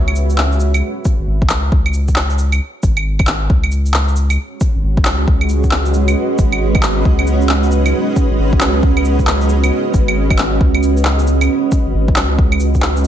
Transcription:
Already playing: sub bass C#2
0.08 claves
0.16 shaker
0.30 shaker
0.38 clap
0.52 shaker
0.60 shaker
0.74 claves, shaker
1.05 kick, shaker
1.19 sub bass G#1
1.27 sub bass G#1
1.42 kick
1.49 sub bass C#2, clap, shaker
1.72 sub bass C#2, kick
1.86 claves
1.94 shaker
2.08 kick, shaker
2.16 clap
2.30 shaker
2.38 shaker
2.52 claves, shaker
2.83 sub bass G#1, kick, shaker
2.97 claves
3.19 kick, claves
3.27 sub bass G#1, clap, shaker
3.49 sub bass C#2, ambient pad G#3, kick
3.64 claves
3.72 ambient pad C#4, shaker
3.86 shaker
3.90 ambient pad F#4, clap
4.08 shaker
4.16 shaker
4.30 claves, shaker
4.36 ambient pad B4
4.56 ambient pad D#5
4.61 kick, shaker
4.75 sub bass G#1
4.83 sub bass G#1
4.97 kick
5.05 sub bass C#2, clap, shaker
5.28 sub bass C#2, kick
5.41 claves
5.49 shaker
5.63 kick, shaker
5.71 clap
5.85 shaker
5.94 shaker
6.08 claves, shaker
6.38 sub bass G#1, kick, shaker
6.52 claves
6.75 kick, claves
6.83 sub bass G#1, clap, shaker
7.05 sub bass C#2, kick
7.19 claves
7.27 shaker
7.41 shaker
7.49 clap
7.63 shaker
7.71 shaker
7.86 claves, shaker
8.16 kick, shaker
8.31 sub bass G#1
8.38 sub bass G#1
8.53 kick
8.60 sub bass C#2, clap, shaker
8.83 sub bass C#2, kick
8.97 claves
9.05 shaker
9.19 kick, shaker
9.27 clap
9.41 shaker
9.49 shaker
9.64 claves, shaker
9.94 sub bass G#1, kick, shaker
10.08 claves
10.30 kick, claves
10.38 sub bass G#1, clap, shaker
10.61 sub bass C#2, kick
10.75 claves
10.83 shaker
10.97 shaker
11.05 clap
11.19 shaker
11.27 shaker
11.41 claves, shaker
11.72 kick, shaker
11.86 sub bass G#1
11.94 sub bass G#1
12.08 kick
12.16 sub bass C#2, clap, shaker
12.38 sub bass C#2, kick
12.52 claves
12.60 shaker
12.74 kick, shaker
12.82 clap
12.97 shaker

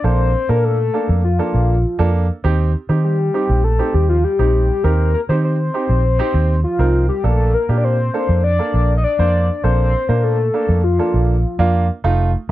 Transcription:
0.04 fingered electric bass A#1, grand piano A#3 D4 A4, soft synth lead C5
0.49 fingered electric bass A#2, grand piano A#3 D4 A4, soft synth lead A#4
0.64 soft synth lead A4
0.94 grand piano A#3 D4 A4
1.09 fingered electric bass F2
1.24 soft synth lead F4
1.39 grand piano A#3 D4 A4
1.54 fingered electric bass A#1
1.99 fingered electric bass F2, grand piano A#3 D4 A4
2.44 fingered electric bass D#2, grand piano C4 D#4 G4
2.89 fingered electric bass D#3, grand piano C4 D#4 G4
3.04 soft synth lead G4
3.34 grand piano C4 D#4 G4
3.49 fingered electric bass A#1
3.64 soft synth lead A4
3.79 grand piano C4 D#4 G4
3.94 fingered electric bass D#2, soft synth lead G4
4.09 soft synth lead F4
4.24 soft synth lead G4
4.39 fingered electric bass A#1, grand piano C4 D#4 G4
4.84 fingered electric bass D#2, grand piano C4 D#4 G4, soft synth lead A#4
5.14 soft synth lead A#4
5.29 fingered electric bass D#3, grand piano C4 D#4 G4, soft synth lead C5
5.44 soft synth lead C5
5.74 grand piano C4 D#4 G4
5.89 fingered electric bass A#1
6.19 grand piano C4 D#4 G4
6.34 fingered electric bass D#2
6.64 soft synth lead F4
6.79 fingered electric bass C2, grand piano C4 D#4 A#4
7.09 soft synth lead G4
7.24 fingered electric bass A#1, grand piano A#3 D4 A4, soft synth lead A4
7.54 soft synth lead A#4
7.69 fingered electric bass A#2, grand piano A#3 D4 G4
7.78 soft synth lead D5
7.84 soft synth lead C5
8.14 grand piano A#3 D4 A4
8.29 fingered electric bass F2
8.44 soft synth lead D5
8.59 grand piano A#3 D4 A4
8.74 fingered electric bass A#1
8.97 soft synth lead D#5
9.04 soft synth lead D5
9.19 fingered electric bass F2, grand piano A#3 D4 C5
9.64 fingered electric bass A#1, grand piano A#3 D4 A4, soft synth lead C5
10.09 fingered electric bass A#2, grand piano A#3 D4 C5, soft synth lead A#4
10.24 soft synth lead A4
10.54 grand piano A#3 D4 A4
10.69 fingered electric bass F2
10.84 soft synth lead F4
10.99 grand piano A#3 D4 A4
11.14 fingered electric bass A#1
11.59 fingered electric bass F2, grand piano A#3 D4 F4
12.04 fingered electric bass F1, grand piano A3 D#4 F4

